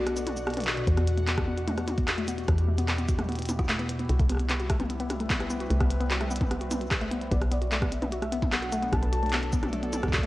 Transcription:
Already playing: B1 B2 D4 F#4 A4 D5 F#5
0.07 B3, cross-stick, closed hi-hat
0.17 B3, closed hi-hat, shaker
0.27 F#4, closed hi-hat, high tom
0.37 B3, shaker
0.47 B3, cross-stick, closed hi-hat
0.50 closed hi-hat
0.54 B4, closed hi-hat
0.57 closed hi-hat, high tom
0.60 closed hi-hat
0.62 closed hi-hat
0.64 F#4, clap, closed hi-hat
0.77 B2, closed hi-hat
0.87 E2 B3, kick, closed hi-hat
0.97 B3, cross-stick, closed hi-hat
1.07 E4 F#4, closed hi-hat
1.17 A3, closed hi-hat
1.27 B3, clap, closed hi-hat
1.37 B3, kick, cross-stick, closed hi-hat
1.47 B3
1.58 F#4, closed hi-hat
1.68 A3, closed hi-hat, high tom
1.78 B3 G4, cross-stick, closed hi-hat
1.88 B3, closed hi-hat, high tom
1.98 B3, kick, closed hi-hat
2.08 F#4, cross-stick, clap, closed hi-hat
2.18 A3, closed hi-hat
2.28 B3, closed hi-hat, shaker
2.38 B3, closed hi-hat
2.48 E2 B3, kick, cross-stick, closed hi-hat
2.58 F#4, closed hi-hat
2.68 A3
2.78 B3, closed hi-hat
2.88 B3, cross-stick, clap, closed hi-hat
2.98 B3, closed hi-hat
3.09 F#4, kick, closed hi-hat, shaker
3.19 A3, cross-stick, closed hi-hat, high tom
3.29 B3, closed hi-hat
3.32 closed hi-hat
3.36 B3, closed hi-hat
3.39 closed hi-hat
3.42 closed hi-hat
3.46 B3, closed hi-hat
3.49 closed hi-hat, high tom, shaker
3.59 F#4, kick, cross-stick, closed hi-hat
3.69 A3, clap, closed hi-hat
3.79 B3, closed hi-hat
3.89 B3, closed hi-hat
3.99 B3, closed hi-hat
4.09 C2 G3 F#4, closed hi-hat
4.19 A3, kick, closed hi-hat
4.30 B3, cross-stick, closed hi-hat
4.32 cross-stick
4.35 cross-stick
4.37 B3, cross-stick, closed hi-hat
4.44 C4
4.50 B3, clap, closed hi-hat
4.54 B4
4.60 F#4, closed hi-hat
4.70 A3, kick, cross-stick, closed hi-hat
4.80 B3, closed hi-hat, high tom
4.90 B3, closed hi-hat
5.00 B3, closed hi-hat
5.10 F#4, cross-stick, closed hi-hat, high tom
5.20 A3, closed hi-hat
5.30 B3, kick, clap, closed hi-hat
5.40 B3, cross-stick, closed hi-hat
5.50 B3, shaker
5.60 F#4, closed hi-hat
5.70 C2 A3, closed hi-hat
5.80 B3, kick, cross-stick, closed hi-hat
5.90 B3, closed hi-hat
6.00 B3, closed hi-hat
6.11 F#4, clap, closed hi-hat
6.21 A3, cross-stick, closed hi-hat
6.31 B3, shaker
6.36 closed hi-hat
6.41 B3, kick, closed hi-hat, high tom
6.51 B3, cross-stick, closed hi-hat
6.61 F#4, closed hi-hat
6.71 B3, closed hi-hat, high tom, shaker
6.81 F#4, closed hi-hat
6.91 kick, cross-stick, clap, closed hi-hat
7.01 A3, closed hi-hat
7.11 B3, closed hi-hat
7.21 B3, closed hi-hat
7.31 B1 F#3 B3 D5, kick, closed hi-hat
7.41 B3, cross-stick, closed hi-hat
7.51 B3 D5, closed hi-hat
7.61 F#4, closed hi-hat
7.72 A3 D4, clap, closed hi-hat
7.76 B2
7.82 B3, kick, cross-stick, closed hi-hat
7.92 B3 E5, closed hi-hat
8.02 B3, closed hi-hat, high tom
8.12 F#4 A4, closed hi-hat
8.22 A3, cross-stick, closed hi-hat
8.32 B3, closed hi-hat
8.42 B3, kick, closed hi-hat, high tom
8.52 B3 F#5, cross-stick, clap, closed hi-hat
8.62 F#4, closed hi-hat
8.72 A3, closed hi-hat, shaker
8.82 B3, closed hi-hat
8.87 D5
8.92 B1 B3 A5, kick, cross-stick, closed hi-hat
9.02 B3, closed hi-hat
9.12 F#4, closed hi-hat
9.23 A3, closed hi-hat
9.26 closed hi-hat
9.29 B3, cross-stick, clap, closed hi-hat
9.33 closed hi-hat
9.43 B3, closed hi-hat
9.53 B3, kick, shaker
9.63 F#4, cross-stick, closed hi-hat, high tom
9.73 A3, closed hi-hat
9.83 B3, closed hi-hat
9.93 B3, closed hi-hat, high tom, shaker
10.03 B3, kick, cross-stick, closed hi-hat
10.08 kick
10.13 F#4, kick, clap, closed hi-hat
10.18 kick
10.23 A3

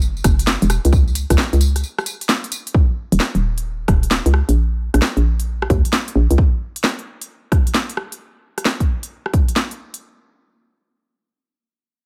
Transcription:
Already playing: F#1
0.02 tambourine
0.17 tambourine
0.24 F#1, kick, cross-stick, closed hi-hat, tambourine
0.39 closed hi-hat, tambourine
0.47 snare, tambourine
0.62 E1, closed hi-hat, tambourine
0.70 cross-stick, closed hi-hat, tambourine
0.85 C#2, closed hi-hat, tambourine
0.93 kick, tambourine
1.08 tambourine
1.15 closed hi-hat, tambourine
1.30 C#2, kick, cross-stick, closed hi-hat, tambourine
1.38 snare, tambourine
1.53 C#2, closed hi-hat, tambourine
1.61 closed hi-hat, tambourine
1.76 cross-stick, closed hi-hat, tambourine
1.84 tambourine
1.98 cross-stick, tambourine
2.06 closed hi-hat, tambourine
2.21 closed hi-hat, tambourine
2.29 snare, tambourine
2.44 closed hi-hat, tambourine
2.52 closed hi-hat, tambourine
2.67 closed hi-hat, tambourine
2.74 kick
3.12 D#1, closed hi-hat
3.20 snare
3.35 D#1, closed hi-hat
3.58 closed hi-hat
3.88 D#1, kick, cross-stick, closed hi-hat
4.03 closed hi-hat
4.11 snare
4.26 C#2, closed hi-hat
4.34 cross-stick
4.49 A#1, closed hi-hat
4.94 A#1, cross-stick, closed hi-hat
5.02 snare
5.17 A#1, closed hi-hat
5.40 closed hi-hat
5.62 cross-stick
5.70 D#2, kick, closed hi-hat
5.85 closed hi-hat
5.93 snare
6.08 closed hi-hat
6.16 A#1
6.31 C#2, closed hi-hat
6.38 kick
6.76 closed hi-hat
6.84 snare
6.99 closed hi-hat
7.21 closed hi-hat
7.52 kick, cross-stick, closed hi-hat
7.67 closed hi-hat
7.75 snare
7.89 closed hi-hat
7.97 cross-stick
8.12 closed hi-hat
8.58 cross-stick, closed hi-hat
8.65 snare
8.80 kick, closed hi-hat
9.03 closed hi-hat
9.26 cross-stick
9.34 kick, closed hi-hat
9.48 closed hi-hat
9.56 snare
9.71 closed hi-hat
9.94 closed hi-hat

